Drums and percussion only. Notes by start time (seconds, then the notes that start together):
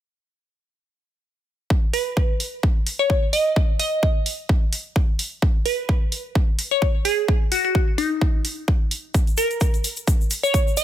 1.70 kick
1.94 open hi-hat
2.17 kick
2.40 open hi-hat
2.63 kick
2.87 open hi-hat
3.10 kick
3.33 open hi-hat
3.56 kick
3.80 open hi-hat
4.03 kick
4.26 open hi-hat
4.49 kick
4.73 open hi-hat
4.96 kick
5.19 open hi-hat
5.42 kick
5.66 open hi-hat
5.89 kick
6.12 open hi-hat
6.35 kick
6.59 open hi-hat
6.82 kick
7.05 open hi-hat
7.28 kick
7.52 open hi-hat
7.75 kick
7.98 open hi-hat
8.21 kick
8.45 open hi-hat
8.68 kick
8.91 open hi-hat
9.14 kick, closed hi-hat, shaker
9.27 closed hi-hat, shaker
9.37 open hi-hat, shaker
9.51 closed hi-hat, shaker
9.60 kick, closed hi-hat, shaker
9.74 closed hi-hat, shaker
9.84 open hi-hat, shaker
9.96 closed hi-hat, shaker
10.07 kick, closed hi-hat, shaker
10.21 shaker
10.30 open hi-hat, shaker
10.44 shaker
10.54 kick, closed hi-hat, shaker
10.68 shaker
10.77 open hi-hat, shaker